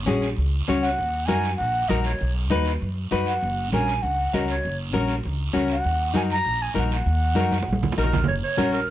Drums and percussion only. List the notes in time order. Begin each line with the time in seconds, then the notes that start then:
0.07 high conga, short guiro
0.22 short guiro
0.36 high conga, long guiro
0.67 high conga, short guiro
0.83 short guiro
0.98 high conga, long guiro
1.28 high conga, short guiro
1.44 short guiro
1.58 high conga, long guiro
1.89 high conga, short guiro
2.04 short guiro
2.19 high conga, long guiro
2.50 high conga, short guiro
2.65 short guiro
2.80 high conga, long guiro
3.11 high conga, short guiro
3.26 short guiro
3.41 high conga, long guiro
3.72 high conga, short guiro
3.88 short guiro
4.03 high conga, long guiro
4.33 high conga, short guiro
4.48 short guiro
4.63 high conga, long guiro
4.93 high conga, short guiro
5.08 short guiro
5.23 high conga, long guiro
5.53 high conga, short guiro
5.68 short guiro
5.84 high conga, long guiro
6.15 high conga, short guiro
6.30 short guiro
6.45 high conga, long guiro
6.76 high conga, short guiro
6.91 short guiro
7.06 high conga, long guiro
7.37 high conga, short guiro
7.52 high conga, short guiro
7.63 high conga
7.67 long guiro
7.73 high conga
7.83 low conga
7.92 low conga
7.98 short guiro
8.04 low conga
8.13 low conga, short guiro
8.24 low conga, long guiro
8.29 high conga
8.58 high conga, short guiro
8.73 short guiro